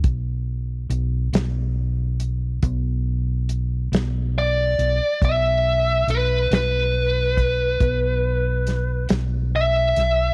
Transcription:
<<
  \new Staff \with { instrumentName = "Lead electric guitar" } { \time 12/8 \key b \minor \tempo 4. = 46 r1 r4 d''4 | e''4 b'8 b'2. r8 e''4 | }
  \new Staff \with { instrumentName = "Fingered electric bass" } { \clef bass \time 12/8 \key b \minor b,,4 b,,8 b,,4. b,,4. b,,4 b,,16 r16 | b,,4 b,,8 b,,4. b,,4. b,,4 b,,8 | }
  \new DrumStaff \with { instrumentName = "Drums" } \drummode { \time 12/8 <hh bd>4 hh8 <hh sn>4 hh8 <hh bd>4 hh8 <hh sn>4 hh8 | <hh bd>4 hh8 <hh sn>4 <hh bd>8 <hh bd>4 <hh sn>8 <hh sn>4 <hh sn>8 | }
>>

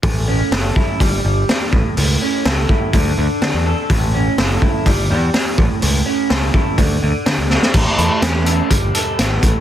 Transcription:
<<
  \new Staff \with { instrumentName = "Clean electric guitar" } { \time 4/4 \key a \major \tempo 4 = 125 a,8 cis'8 a'8 e'8 g8 g8 d'8 a,8 | a,8 cis'8 a'8 e'8 d8 d8 d'8 a'8 | a,8 cis'8 a'8 e'8 g8 g8 d'8 a,8 | a,8 cis'8 a'8 e'8 d8 d8 d'8 a'8 |
a,8 a8 cis'8 a'8 g8 a'8 b8 a,8 | }
  \new Staff \with { instrumentName = "Picked electric bass" } { \clef bass \time 4/4 \key a \major a,,4 fis,,8 r8 g,,8 g,,8 r8 a,,16 r16 | cis,8 r8 cis,8 r8 d,8 d,16 r16 d16 e,8 r16 | a,,4 fis,,8 r8 g,,8 e,8 r8 a,,16 r16 | cis,8 r8 cis,8 r8 d,8 d,16 r16 d16 cis,8 r16 |
a,,16 r16 e,16 r16 e,4 g,,8 r8 gis,,8 a,,16 r16 | }
  \new DrumStaff \with { instrumentName = "Drums" } \drummode { \time 4/4 <hho bd>4 <hho sn>8 bd8 <hho bd>4 <hho sn>8 bd8 | hho4 <hho sn>8 bd8 <hho bd>4 <hho sn>4 | <hho bd>4 <hho sn>8 bd8 <hho bd>4 <hho sn>8 bd8 | hho4 <hho sn>8 bd8 <hho bd>4 <hho sn>8 sn16 sn16 |
<cymc bd>8 hh8 <hh sn>8 hh8 <hh bd>8 hh8 <hh sn>8 <hh bd>8 | }
>>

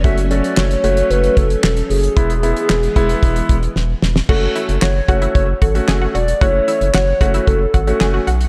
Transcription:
<<
  \new Staff \with { instrumentName = "Soft synth lead" } { \time 4/4 \key fis \minor \tempo 4 = 113 e''8 d''8 cis''4 b'8 a'8 a'8 gis'8~ | gis'2. r4 | a'4 cis''4 cis''8 a'4 d''8 | cis''4 cis''4 a'4. r8 | }
  \new Staff \with { instrumentName = "Synth arpeggio sound" } { \time 4/4 \key fis \minor r1 | r1 | fis'8 e'8 fis'8 fis'16 e'8 r16 fis'8 gis'16 fis'16 fis'8 | fis'8 e'8 fis'8 fis'16 e'8 r16 fis'8 gis'16 fis'16 fis'8 | }
  \new Staff \with { instrumentName = "Grand piano" } { \time 4/4 \key fis \minor <a cis' fis'>16 r16 <a cis' fis'>8 r8 <a cis' fis'>4 r4. | <gis b e'>16 r16 <gis b e'>8 r8 <gis b e'>4 r4. | <a cis' fis'>8. r8. <a cis' fis'>8. r8 <a cis' fis'>8. r8 | <a cis' e'>8. r8. <a cis' fis'>8. r8 <a cis' fis'>8. r8 | }
  \new Staff \with { instrumentName = "String machine" } { \clef bass \time 4/4 \key fis \minor <fis a cis'>1 | <e gis b>1 | r1 | r1 | }
  \new Staff \with { instrumentName = "Analog synth bass" } { \clef bass \time 4/4 \key fis \minor fis,,4 fis,,8 fis,,8 fis,,8 fis,,8 e,,8 fis,,8 | e,,4 e,,8 e,,8 e,,8 e,,8 e,,8 e,,8 | fis,,8 r16 fis,,16 fis,,8 fis,,8 fis,,8 gis,,8 fis,,8 e,,8 | fis,,8 r16 fis,,16 fis,,8 fis,,8 fis,,8 gis,,8 fis,,8 b,,8 | }
  \new DrumStaff \with { instrumentName = "Drums" } \drummode { \time 4/4 <hh bd>16 hh16 hh16 hh16 <hc sn>16 hh16 hh16 hh16 hh16 hh16 <hh bd>16 hh16 <hc sn>16 hh16 hho16 hh16 | <hh bd>16 hh16 hh16 hh16 <hc sn>16 hh16 <hh bd>16 hh16 <hh bd>16 hh16 <hh bd>16 hh16 sn8 sn16 sn16 | <cymc bd>8 hh16 hh16 <hc sn>8 <hh bd>16 hh16 <hh bd>8 <hh bd>16 hh16 <hc sn>8 hh16 hh16 | <hh bd>8 hh16 hh16 <hc sn>8 <hh bd>16 hh16 <hh bd>8 <hh bd>16 hh16 <hc sn>8 hh16 hh16 | }
>>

